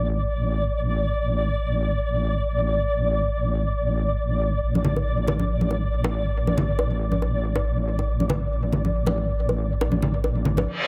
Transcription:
Already playing: A1 D5
4.63 A1
4.75 high conga
4.85 low conga
4.96 high bongo
5.28 high bongo, low conga
5.39 high conga
5.61 high conga
5.71 high bongo
6.04 high bongo
6.47 high bongo, high conga
6.58 low conga
6.79 high bongo
7.12 high conga
7.22 high bongo
7.55 high bongo
7.99 high bongo
8.20 high conga
8.29 high bongo, low conga
8.73 high bongo, low conga
8.85 high conga
9.06 high bongo, high conga
9.49 high bongo
9.81 high bongo
9.92 high conga
10.02 low conga
10.24 high bongo
10.45 low conga
10.57 high bongo, high conga
10.67 reverse cymbal

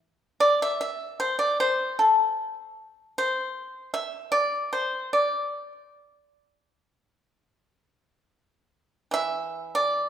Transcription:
0.40 D5
0.62 E5
0.81 E5
1.20 C5
1.39 D5
1.60 C5
1.99 A4
3.18 C5
3.94 E5
4.32 D5
4.73 C5
5.13 D5
9.11 E3 E5
9.75 D5

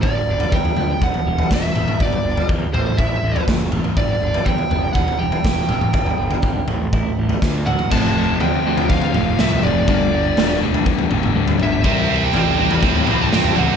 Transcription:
Already playing: G3
0.02 G1 G2 D5, kick, floor tom
0.27 G1 D3
0.40 floor tom
0.52 E2 G3 G5, kick, floor tom
0.65 floor tom
0.77 D2 B3, floor tom
1.01 E1 E3 F#5, kick, floor tom
1.14 floor tom
1.26 E1 G3
1.39 floor tom
1.51 E1 E3 E5, kick, snare
1.75 E1 G3, mid tom
1.88 mid tom
2.00 G1 G2 D5, kick, floor tom
2.13 floor tom
2.24 G1 D3
2.37 floor tom
2.49 E2 G3, kick, floor tom
2.73 A1 A2 C5, floor tom, mid tom
2.97 A1 E4 E5, kick, floor tom, mid tom
3.23 A1 G3
3.36 floor tom
3.48 F#1 E3, kick, snare
3.72 G3, mid tom
3.84 mid tom
3.97 G1 G2 D5, kick, floor tom
4.21 G1 D3
4.34 floor tom
4.45 E2 G3 G5, kick, floor tom
4.58 floor tom
4.70 F#1 B3, floor tom
4.93 E1 E3 F#5, kick, floor tom
5.08 floor tom
5.19 E1 G3 G5
5.32 floor tom
5.44 E1 E3, kick, snare
5.69 E1 G3, mid tom
5.81 mid tom
5.93 G1 G2, kick, floor tom
6.06 floor tom
6.19 G1 D3
6.31 floor tom
6.42 G#1 G3, kick, floor tom
6.68 A1 A2, floor tom, mid tom
6.93 A1 E4, kick, floor tom, mid tom
7.18 A1 G3
7.29 floor tom
7.42 D2 D3, kick, snare
7.66 F#3 F#5, mid tom
7.79 mid tom
7.91 F1 F2 C3 F3 A3 C4 A5, kick, floor tom, crash
8.16 F2 C3 F3 A3
8.40 D2 F2 C3 F3 A3 G5, floor tom
8.65 D2 F2 C3 F3 A3 C4
8.77 floor tom
8.89 D2 F2 C3 F3 A3 F5, kick
9.02 floor tom
9.14 F1 F2 C3 F3 A3, mid tom
9.38 C2 F2 C3 F3 A3 C4 E5, snare
9.51 floor tom
9.63 F1 F2 C3 F3 A3 D5, mid tom
9.88 G1 G2 D3 G3 A3 D4, kick, floor tom
10.12 G2 D3 G3 A3
10.37 E1 G2 D3 G3 A3, snare, floor tom
10.61 E1 G2 D3 G3 A3 D4
10.74 floor tom
10.85 E2 G2 D3 G3 A3, kick
10.99 floor tom
11.11 G1 G2 D3 G3 A3, mid tom
11.23 mid tom
11.35 D2 G2 D3 G3 A3 D4
11.48 floor tom
11.59 G1 G2 D3 G3 A3 E5, mid tom
11.84 C2 C3 E3 G3 C4, kick, floor tom
12.09 C3 E3 G3 C4
12.23 G5
12.33 A1 C3 E3 G3 C4 G5, floor tom
12.58 A1 C3 E3 G3 C4
12.71 B5, floor tom
12.82 A2 C3 E3 G3 C4, kick
12.95 floor tom
13.07 C2 C3 E3 G3 C4, mid tom
13.22 A5
13.32 G2 C3 E3 G3 C4 G5, snare
13.44 floor tom
13.56 C#2 C3 E3 G3 C4 F#5, mid tom

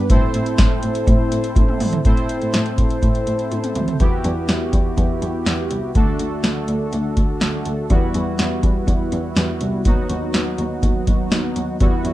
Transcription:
0.10 A2 C4 E4 A4 C5, kick, closed hi-hat
0.34 A2, closed hi-hat
0.46 closed hi-hat
0.58 A2, kick, snare, closed hi-hat
0.83 A2, closed hi-hat
0.95 closed hi-hat
1.07 A2, kick, closed hi-hat
1.32 A2, closed hi-hat
1.44 closed hi-hat
1.56 A2, kick, closed hi-hat, high tom
1.68 mid tom
1.80 A2, mid tom, open hi-hat
1.93 closed hi-hat, floor tom
2.05 A2 C4 E4 A4 C5, kick, closed hi-hat
2.17 closed hi-hat
2.29 closed hi-hat
2.42 A2, closed hi-hat
2.54 A2, snare, closed hi-hat
2.66 closed hi-hat
2.78 A2, kick, closed hi-hat
2.90 closed hi-hat
3.02 A2, kick, closed hi-hat
3.15 closed hi-hat
3.27 A2, closed hi-hat
3.39 closed hi-hat
3.51 A2, closed hi-hat, high tom
3.64 closed hi-hat, mid tom
3.75 D2, closed hi-hat, mid tom
3.88 closed hi-hat, floor tom
4.00 E2 B3 E4 F#4 G4, kick, closed hi-hat
4.24 E2, closed hi-hat
4.49 E2, snare, closed hi-hat
4.73 E2, kick, closed hi-hat
4.97 E2, kick, closed hi-hat
5.22 E2, closed hi-hat
5.46 E2, snare, closed hi-hat
5.71 C2, closed hi-hat
5.95 D2 A3 D4 F#4 A4, kick, closed hi-hat
6.19 D2, closed hi-hat
6.44 D2, snare, closed hi-hat
6.68 D2, closed hi-hat
6.93 D2, closed hi-hat
7.17 D2, kick, closed hi-hat
7.41 D2, snare, closed hi-hat
7.66 D2, closed hi-hat
7.90 E2 G3 B3 E4 F#4, kick, closed hi-hat
8.14 E2, closed hi-hat
8.39 E2, snare, closed hi-hat
8.63 E2, kick, closed hi-hat
8.87 E2, kick, closed hi-hat
9.12 E2, closed hi-hat
9.36 E2, snare, closed hi-hat
9.61 C2, closed hi-hat
9.85 D#2 F#3 B3 D#4 F#4, kick, closed hi-hat
10.10 D#2, closed hi-hat
10.34 D#2, snare, closed hi-hat
10.58 D#2, closed hi-hat
10.83 D#2, kick, closed hi-hat
11.07 D#2, kick, closed hi-hat
11.32 D#2, snare, closed hi-hat
11.56 D#2, closed hi-hat
11.80 E2 G3 B3 E4 F#4, kick, closed hi-hat
12.05 E2, closed hi-hat

